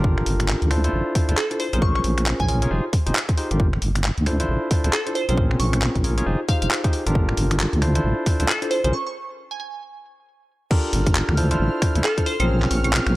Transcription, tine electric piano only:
0.00 0.69 D4 medium
0.00 0.69 F4 medium
0.00 0.69 G4 medium
0.00 0.69 A4 medium
0.00 0.69 A#4 loud
0.71 0.82 D4 medium
0.71 0.82 E4 medium
0.71 0.82 F4 medium
0.71 0.82 A4 medium
0.71 0.82 C5 medium
0.84 1.13 D4 medium
0.84 1.13 E4 medium
0.84 1.13 F4 medium
0.84 1.13 A4 medium
0.84 1.13 C5 loud
1.15 1.27 D4 medium
1.15 1.27 E4 medium
1.15 1.27 F4 medium
1.15 1.27 A4 medium
1.15 1.27 C5 medium
1.29 1.37 D4 medium
1.29 1.37 E4 medium
1.29 1.37 F4 medium
1.29 1.37 A4 medium
1.29 1.37 C5 medium
1.51 1.67 D4 medium
1.51 1.67 E4 medium
1.51 1.67 F4 medium
1.51 1.67 A4 medium
1.51 1.67 C5 medium
1.73 2.46 C#4 loud
1.73 2.46 F4 medium
1.73 2.46 G#4 medium
1.73 2.46 A#4 medium
1.73 2.46 C5 loud
2.48 2.60 C#4 medium
2.48 2.60 F4 medium
2.48 2.60 G#4 medium
2.48 2.60 A#4 medium
2.48 2.60 C#5 medium
2.62 2.69 C#4 medium
2.62 2.69 F4 medium
2.62 2.69 G#4 medium
2.62 2.69 A#4 medium
2.62 2.69 C#5 medium
2.71 2.84 D#4 medium
2.71 2.84 F4 medium
2.71 2.84 G4 medium
2.71 2.84 G#4 medium
2.71 2.84 C5 loud
3.06 3.15 D#4 medium
3.06 3.15 F4 medium
3.06 3.15 G4 medium
3.06 3.15 G#4 medium
3.06 3.15 C5 loud
3.37 3.49 D#4 medium
3.37 3.49 F4 medium
3.37 3.49 G4 medium
3.37 3.49 G#4 medium
3.37 3.49 C5 loud
3.51 3.67 D4 medium
3.51 3.67 F4 medium
3.51 3.67 G4 medium
3.51 3.67 A4 medium
3.51 3.67 A#4 medium
4.26 4.38 D4 medium
4.26 4.38 E4 medium
4.26 4.38 F4 medium
4.26 4.38 A4 medium
4.26 4.38 C5 loud
4.40 4.69 D4 medium
4.40 4.69 E4 medium
4.40 4.69 F4 medium
4.40 4.69 A4 medium
4.40 4.69 C5 medium
4.71 4.82 D4 medium
4.71 4.82 E4 medium
4.71 4.82 F4 medium
4.71 4.82 A4 medium
4.71 4.82 C5 medium
4.84 4.93 D4 medium
4.84 4.93 E4 medium
4.84 4.93 F4 medium
4.84 4.93 A4 medium
4.84 4.93 C5 medium
5.07 5.22 D4 medium
5.07 5.22 E4 medium
5.07 5.22 F4 medium
5.07 5.22 A4 medium
5.07 5.22 C5 medium
5.29 6.02 C4 loud
5.29 6.02 C#4 loud
5.29 6.02 F4 medium
5.29 6.02 G#4 medium
5.29 6.02 A#4 medium
6.04 6.16 C#4 medium
6.04 6.16 F4 medium
6.04 6.16 G#4 medium
6.04 6.16 A#4 medium
6.04 6.16 C#5 medium
6.18 6.25 C#4 medium
6.18 6.25 F4 medium
6.18 6.25 G#4 medium
6.18 6.25 A#4 medium
6.18 6.25 C#5 medium
6.26 6.39 D#4 medium
6.26 6.39 F4 medium
6.26 6.39 G4 medium
6.26 6.39 G#4 medium
6.26 6.39 C5 loud
6.48 6.81 D#4 medium
6.48 6.81 F4 medium
6.48 6.81 G4 medium
6.48 6.81 G#4 medium
6.48 6.81 C5 medium
6.84 7.03 D#4 medium
6.84 7.03 F4 medium
6.84 7.03 G4 medium
6.84 7.03 G#4 medium
6.84 7.03 C5 loud
7.06 7.80 D4 medium
7.06 7.80 F4 medium
7.06 7.80 G4 medium
7.06 7.80 A4 medium
7.06 7.80 A#4 loud
7.82 7.93 D4 medium
7.82 7.93 E4 medium
7.82 7.93 F4 medium
7.82 7.93 A4 medium
7.82 7.93 C5 medium
7.95 8.24 D4 medium
7.95 8.24 E4 medium
7.95 8.24 F4 medium
7.95 8.24 A4 medium
7.95 8.24 C5 medium
8.26 8.38 D4 medium
8.26 8.38 E4 medium
8.26 8.38 F4 medium
8.26 8.38 A4 medium
8.26 8.38 C5 medium
8.40 8.48 D4 medium
8.40 8.48 E4 medium
8.40 8.48 F4 medium
8.40 8.48 A4 medium
8.40 8.48 C5 medium
8.62 8.78 D4 medium
8.62 8.78 E4 medium
8.62 8.78 F4 medium
8.62 8.78 A4 medium
8.62 8.78 C5 medium
8.84 8.93 C#4 loud
8.84 8.93 F4 medium
8.84 8.93 G#4 medium
8.84 8.93 A#4 medium
8.84 8.93 C5 loud
10.71 11.34 D4 loud
10.71 11.34 F4 medium
10.71 11.34 G4 loud
10.71 11.34 A4 medium
10.71 11.34 A#4 loud
11.37 11.49 D4 medium
11.37 11.49 E4 medium
11.37 11.49 F4 medium
11.37 11.49 A4 medium
11.37 11.49 C5 loud
11.51 11.80 D4 medium
11.51 11.80 E4 medium
11.51 11.80 F4 medium
11.51 11.80 A4 medium
11.51 11.80 C5 loud
11.82 11.93 D4 medium
11.82 11.93 E4 medium
11.82 11.93 F4 medium
11.82 11.93 A4 medium
11.82 11.93 C5 medium
11.95 12.04 D4 medium
11.95 12.04 E4 medium
11.95 12.04 F4 medium
11.95 12.04 A4 medium
11.95 12.04 C5 medium
12.18 12.33 D4 medium
12.18 12.33 E4 medium
12.18 12.33 F4 medium
12.18 12.33 A4 medium
12.18 12.33 C5 medium
12.40 13.13 C4 loud
12.40 13.13 C#4 loud
12.40 13.13 F4 medium
12.40 13.13 G#4 medium
12.40 13.13 A#4 medium

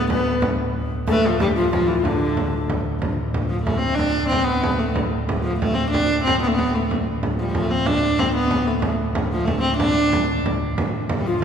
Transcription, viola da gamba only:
0.10 0.44 B3 medium
1.10 1.29 A3 loud
1.27 1.40 F3 medium
1.41 1.48 G3 medium
1.56 1.71 F3 medium
1.72 1.89 F3 medium
1.87 2.02 E3 medium
2.02 2.64 D3 medium
3.49 3.62 F3 medium
3.63 3.79 A3 medium
3.78 3.96 C4 medium
3.94 4.28 D4 loud
4.29 4.45 C4 medium
4.44 4.80 B3 medium
4.78 4.95 A3 medium
5.43 5.59 F3 medium
5.60 5.75 A3 medium
5.74 5.89 C4 medium
5.90 6.22 D4 loud
6.23 6.39 C4 medium
6.41 6.48 B3 medium
6.47 6.55 A3 medium
6.54 6.76 B3 medium
6.75 6.90 A3 medium
7.39 7.43 F3 medium
7.39 7.51 G3 medium
7.49 7.59 F3 medium
7.58 7.72 A3 medium
7.70 7.88 C4 medium
7.86 8.20 D4 loud
8.19 8.34 C4 medium
8.35 8.69 B3 medium
8.67 8.84 A3 medium
9.31 9.46 F3 medium
9.45 9.60 A3 medium
9.61 9.76 C4 medium
9.77 10.39 D4 loud
11.20 11.27 G3 medium
11.26 11.41 F3 medium

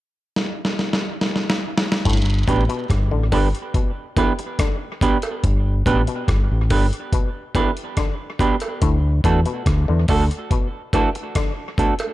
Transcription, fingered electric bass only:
2.06 2.43 G1 loud
2.48 2.67 A1 medium
2.90 3.09 G1 loud
3.13 3.30 A1 medium
3.33 3.52 G1 medium
5.44 5.81 G1 medium
5.87 6.05 A1 medium
6.29 6.48 G1 medium
6.51 6.69 A1 loud
6.71 6.90 G1 medium
8.82 9.20 D2 loud
9.25 9.44 E2 medium
9.67 9.86 D2 medium
9.89 10.07 E2 medium
10.09 10.28 D2 loud

